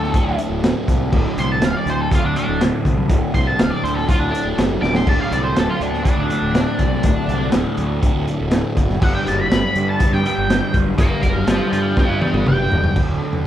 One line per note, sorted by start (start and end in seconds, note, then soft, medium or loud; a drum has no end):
0.00 0.12 D2 medium
0.00 0.13 D2 medium
0.00 0.13 A2 medium
0.00 0.15 D3 medium
0.00 8.97 F#3 medium
0.00 8.97 D4 medium
0.00 0.37 A4 medium
0.00 8.97 A4 medium
0.00 snare soft
0.13 0.62 D2 medium
0.13 0.39 A2 loud
0.13 0.37 D3 loud
0.13 kick loud
0.13 closed hi-hat medium
0.13 low conga medium
0.26 0.37 D2 medium
0.37 0.61 A2 medium
0.37 0.64 D3 medium
0.37 closed hi-hat medium
0.50 0.72 D1 medium
0.62 1.10 D2 medium
0.62 0.88 A2 medium
0.62 0.86 D3 medium
0.62 snare loud
0.62 closed hi-hat medium
0.86 1.10 C2 medium
0.86 1.11 A2 medium
0.86 1.13 D3 medium
0.86 kick medium
0.86 closed hi-hat medium
0.86 low conga medium
1.11 1.24 D1 loud
1.11 1.61 D2 loud
1.11 1.39 A2 loud
1.11 1.37 D3 loud
1.11 kick loud
1.11 crash loud
1.37 1.59 C2 medium
1.37 1.62 A2 medium
1.37 1.64 D3 medium
1.37 1.52 C6 loud
1.37 closed hi-hat medium
1.52 1.63 A5 medium
1.61 1.73 D1 loud
1.61 2.11 D2 medium
1.61 2.11 A2 medium
1.61 2.13 D3 medium
1.61 1.77 F5 loud
1.61 snare loud
1.61 closed hi-hat loud
1.75 1.88 D5 medium
1.75 high conga medium
1.86 2.08 D2 medium
1.86 closed hi-hat medium
1.86 low conga medium
1.90 2.01 C5 medium
2.01 2.12 A4 loud
2.11 2.59 D2 medium
2.11 2.37 A2 medium
2.11 2.35 D3 loud
2.11 2.25 F4 medium
2.11 kick loud
2.11 closed hi-hat loud
2.11 low conga medium
2.24 2.35 D2 medium
2.24 2.36 D4 medium
2.35 2.60 A2 medium
2.35 2.62 D3 medium
2.35 2.61 D4 loud
2.35 closed hi-hat medium
2.48 2.70 D1 medium
2.60 3.08 D2 medium
2.60 2.86 A2 medium
2.60 2.84 D3 medium
2.60 snare loud
2.60 closed hi-hat medium
2.84 3.07 C2 medium
2.84 3.09 A2 medium
2.84 3.11 D3 medium
2.84 kick medium
2.84 closed hi-hat medium
2.84 low conga medium
2.96 high conga medium
3.08 3.21 D1 loud
3.08 3.57 D2 medium
3.08 3.34 A2 loud
3.08 3.33 D3 loud
3.08 kick loud
3.08 closed hi-hat loud
3.33 3.56 C2 medium
3.33 3.58 A2 medium
3.33 3.60 D3 medium
3.33 3.47 C6 medium
3.33 kick medium
3.33 closed hi-hat medium
3.47 3.59 A5 medium
3.57 3.70 D1 medium
3.57 4.08 D2 medium
3.57 4.08 A2 medium
3.57 4.10 D3 medium
3.57 3.70 F5 loud
3.57 snare loud
3.57 closed hi-hat loud
3.57 low conga medium
3.70 3.83 D5 medium
3.70 high conga medium
3.82 4.05 D2 medium
3.82 3.96 C5 loud
3.82 closed hi-hat medium
3.82 low conga medium
3.94 4.07 A4 medium
3.94 snare soft
4.07 4.57 D2 medium
4.07 4.33 A2 medium
4.07 4.31 D3 loud
4.07 4.19 F4 medium
4.07 kick loud
4.07 closed hi-hat medium
4.19 4.31 D2 medium
4.19 4.31 D4 medium
4.32 4.58 A2 medium
4.32 4.59 D3 medium
4.32 4.56 D4 loud
4.32 closed hi-hat medium
4.45 4.56 D1 medium
4.57 4.80 F#1 medium
4.57 5.06 D2 medium
4.57 4.83 A2 medium
4.57 4.82 D3 medium
4.57 snare loud
4.57 closed hi-hat medium
4.70 high conga medium
4.82 5.04 D1 medium
4.82 5.06 A2 medium
4.82 5.08 D3 medium
4.82 4.94 D6 medium
4.82 snare medium
4.82 low conga medium
4.94 5.09 C6 medium
4.94 snare loud
4.94 high conga medium
5.06 5.17 D1 loud
5.06 5.55 D2 medium
5.06 5.33 A2 loud
5.06 5.31 D3 loud
5.06 5.20 A5 loud
5.06 kick loud
5.06 crash loud
5.20 5.32 F5 medium
5.31 5.53 C2 medium
5.31 5.56 A2 medium
5.31 5.58 D3 medium
5.31 5.43 D5 medium
5.31 closed hi-hat medium
5.44 5.59 C5 medium
5.55 5.68 D1 medium
5.55 6.03 D2 medium
5.55 6.05 A2 medium
5.55 6.06 D3 medium
5.55 5.69 A4 medium
5.55 snare loud
5.55 closed hi-hat loud
5.69 5.82 F4 medium
5.69 high conga medium
5.80 6.02 D2 medium
5.80 6.03 D4 medium
5.80 closed hi-hat medium
5.80 low conga medium
5.94 snare soft
6.04 6.52 D2 medium
6.04 6.30 A2 medium
6.04 6.26 D3 medium
6.04 7.49 D4 loud
6.04 kick loud
6.04 closed hi-hat loud
6.04 low conga medium
6.17 6.28 D2 medium
6.28 6.53 A2 medium
6.28 6.54 D3 medium
6.28 closed hi-hat medium
6.42 6.64 D1 medium
6.53 7.03 D2 medium
6.53 6.82 A2 medium
6.53 6.78 D3 medium
6.53 snare loud
6.53 closed hi-hat loud
6.79 7.01 C2 medium
6.79 7.05 A2 medium
6.79 7.06 D3 medium
6.79 kick medium
6.79 closed hi-hat medium
6.79 low conga medium
6.91 high conga medium
7.03 7.15 D1 loud
7.03 7.52 D2 loud
7.03 7.31 A2 loud
7.03 kick loud
7.03 closed hi-hat loud
7.08 7.28 D3 loud
7.28 7.50 C2 medium
7.28 7.54 D3 medium
7.28 closed hi-hat medium
7.33 7.53 A2 medium
7.52 7.64 D1 loud
7.52 8.00 D2 medium
7.52 8.02 A2 medium
7.52 8.03 D3 medium
7.52 snare loud
7.52 closed hi-hat loud
7.66 high conga medium
7.77 8.00 D2 medium
7.77 closed hi-hat medium
8.01 8.51 D2 loud
8.01 8.29 A2 medium
8.01 8.26 D3 loud
8.01 kick loud
8.01 closed hi-hat loud
8.01 low conga medium
8.15 8.26 D2 medium
8.27 8.53 A2 medium
8.27 8.54 D3 medium
8.27 closed hi-hat medium
8.40 8.62 D1 medium
8.51 9.00 D2 medium
8.51 8.79 A2 medium
8.51 8.76 D3 medium
8.51 snare loud
8.51 closed hi-hat medium
8.77 8.99 F#1 medium
8.77 9.02 A2 medium
8.77 9.00 D3 medium
8.77 kick medium
8.77 closed hi-hat medium
8.77 low conga medium
8.89 snare soft
8.89 high conga medium
9.00 9.12 G1 loud
9.00 9.50 G2 loud
9.00 9.27 D3 medium
9.00 12.93 G3 medium
9.00 9.25 G3 loud
9.00 12.93 D4 medium
9.00 12.93 B4 medium
9.00 9.14 F#5 loud
9.00 kick loud
9.00 crash loud
9.15 9.26 G5 medium
9.25 9.48 F#1 medium
9.25 9.51 D3 medium
9.25 9.53 G3 medium
9.25 9.41 A5 medium
9.25 closed hi-hat medium
9.41 9.88 B5 medium
9.50 9.62 G1 loud
9.50 9.98 G2 medium
9.50 10.00 D3 medium
9.50 10.02 G3 medium
9.50 snare loud
9.50 closed hi-hat medium
9.62 high conga medium
9.74 9.97 G2 medium
9.74 closed hi-hat medium
9.74 low conga medium
9.89 10.12 A5 loud
9.99 10.47 G2 medium
9.99 10.26 D3 loud
9.99 10.23 G3 loud
9.99 kick loud
9.99 closed hi-hat loud
9.99 low conga medium
10.13 10.23 G2 medium
10.13 10.24 G5 medium
10.13 snare soft
10.24 10.49 D3 medium
10.24 10.50 G3 medium
10.24 10.74 G5 loud
10.24 closed hi-hat medium
10.38 10.59 G1 medium
10.48 10.96 G2 medium
10.48 10.74 D3 medium
10.48 10.71 G3 medium
10.48 snare loud
10.48 closed hi-hat medium
10.72 10.95 F#1 medium
10.72 10.97 D3 medium
10.72 10.98 G3 medium
10.72 kick medium
10.72 closed hi-hat medium
10.72 low conga medium
10.86 high conga medium
10.97 11.09 G1 loud
10.97 11.44 G2 loud
10.97 11.23 D3 loud
10.97 11.20 G3 loud
10.97 11.22 F5 loud
10.97 11.22 D6 loud
10.97 kick loud
10.97 closed hi-hat loud
11.21 11.45 F#1 medium
11.21 11.46 D3 medium
11.21 11.47 G3 medium
11.21 11.46 F5 medium
11.21 11.47 D6 medium
11.21 kick medium
11.21 closed hi-hat medium
11.35 high conga medium
11.46 11.58 G1 loud
11.46 11.95 G2 medium
11.46 11.96 D3 medium
11.46 11.97 G3 medium
11.46 11.71 F5 loud
11.46 11.72 A5 medium
11.46 snare loud
11.46 closed hi-hat loud
11.60 high conga medium
11.72 11.94 G2 medium
11.72 11.96 F5 medium
11.72 11.97 A5 loud
11.72 closed hi-hat medium
11.72 low conga medium
11.96 12.45 G2 loud
11.96 12.23 D3 loud
11.96 12.20 G3 loud
11.96 12.20 B4 medium
11.96 12.21 G5 medium
11.96 kick loud
11.96 snare medium
11.96 high conga medium
11.96 low conga medium
12.10 12.21 G2 medium
12.21 12.47 D3 medium
12.21 12.48 G3 medium
12.21 12.45 B4 medium
12.21 12.46 G5 medium
12.21 high tom medium
12.33 12.45 G1 medium
12.33 high tom medium
12.46 12.69 F#1 medium
12.46 12.94 G2 medium
12.46 12.74 D3 medium
12.46 12.71 G3 medium
12.46 12.95 G5 loud
12.46 mid tom medium
12.58 high conga medium
12.70 12.94 D1 medium
12.70 12.95 G3 medium
12.70 floor tom loud
12.70 low conga medium
12.76 12.97 D3 medium
12.84 floor tom loud
12.84 high conga medium
12.95 13.18 D1 medium
12.95 13.47 D2 medium
12.95 13.47 F#3 medium
12.95 13.47 D4 medium
12.95 13.47 A4 medium
12.95 kick loud
12.95 floor tom medium
12.95 crash loud
13.22 13.47 D3 medium
13.33 floor tom medium